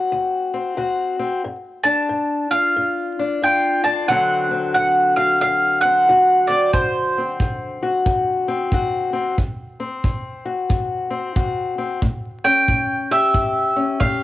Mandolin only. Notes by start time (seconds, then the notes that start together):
1.83 A5
2.51 F5
3.43 G5
3.84 A5
4.08 F#5
4.74 F#5
5.16 F5
5.41 F5
5.81 F#5
6.47 D5
6.73 C5
12.44 G5
13.12 E5
14.00 F5